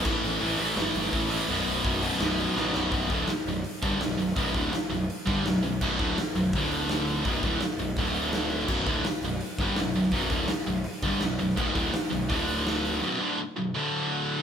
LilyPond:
<<
  \new Staff \with { instrumentName = "Distorted electric guitar" } { \clef bass \time 4/4 \key b \minor \tempo 4 = 166 <a, e a>4 <a, e a>8 <a, e a>8 <a, e a>4 <a, e a>8 <a, e a>8 | <b,, fis, b,>4 <b,, fis, b,>8 <b,, fis, b,>8 <b,, fis, b,>4 <b,, fis, b,>8 <b,, fis, b,>8 | <b,, fis, b,>8 <d, a, d>8 r8 <b,, fis,>8 r8 <g, d g>8 <b,, fis,>8 <b,, fis,>8 | <b,, fis, b,>8 <d, a, d>8 r8 <b,, fis,>8 r8 <g, d g>8 <b,, fis,>8 <b,, fis,>8 |
<b,, fis, b,>8 <d, a, d>8 r8 <b,, fis,>8 <d, a, d>2 | <b,, fis, b,>8 <d, a, d>8 r8 <b,, fis,>8 <d, a, d>2 | <b,, fis, b,>8 <d, a, d>8 r8 <b,, fis,>8 r8 <g, d g>8 <b,, fis,>8 <b,, fis,>8 | <b,, fis, b,>8 <d, a, d>8 r8 <b,, fis,>8 r8 <g, d g>8 <b,, fis,>8 <b,, fis,>8 |
<b,, fis, b,>8 <d, a, d>8 r8 <b,, fis,>8 <d, a, d>2 | <b,, fis, b,>8 <d, a, d>8 r8 <b,, fis,>8 <d, a, d>2 | }
  \new Staff \with { instrumentName = "Picked electric bass" } { \clef bass \time 4/4 \key b \minor a,,8 a,,8 a,,8 a,,8 g,,8 g,,8 a,,4 | b,,,8 b,,,8 b,,,4 b,,,4 a,,8 b,,,8 | b,,,8 d,,8 r8 b,,,8 r8 g,,8 b,,,8 b,,,8 | b,,,8 d,,8 r8 b,,,8 r8 g,,8 b,,,8 b,,,8 |
b,,,8 d,,8 r8 b,,,8 d,,2 | b,,,8 d,,8 r8 b,,,8 d,,2 | b,,,8 d,,8 r8 b,,,8 r8 g,,8 b,,,8 b,,,8 | b,,,8 d,,8 r8 b,,,8 r8 g,,8 b,,,8 b,,,8 |
b,,,8 d,,8 r8 b,,,8 d,,2 | r1 | }
  \new DrumStaff \with { instrumentName = "Drums" } \drummode { \time 4/4 <cymc bd>8 hho8 hho8 hho8 <hho sn>8 hho8 <hho bd>8 hho8 | hho8 hho8 <hho bd>8 hho8 <hho sn>8 hho8 sn8 sn8 | <hho bd>8 <hho bd>8 <hho sn>8 hho8 hho8 <hho bd>8 <hho sn>8 hho16 sn16 | <hho bd>8 <hho bd>8 <hho sn>8 hho8 hho8 <hho bd>8 <hho sn>8 hho8 |
<cymc bd>8 <hho bd>8 <hho sn>8 hho8 <hho bd>8 hho8 <hho sn>8 hho8 | <hho bd>8 <hho bd>8 <hho sn>8 hho8 <hho bd>8 hho8 <hho sn>8 hho16 sn16 | <cymc bd>8 <hho bd>8 <hho sn>8 <hho sn>8 hho8 <hho bd>8 <hho sn>8 hho16 sn16 | <hho bd>8 <hho bd>8 <hho sn>8 hho8 hho8 <hho bd>8 <hho sn>8 hho16 sn16 |
<cymc bd>8 <hho bd>8 <hho sn>8 hho8 <hho bd>8 hho8 <hho sn>8 hho8 | r4 r4 r4 r4 | }
>>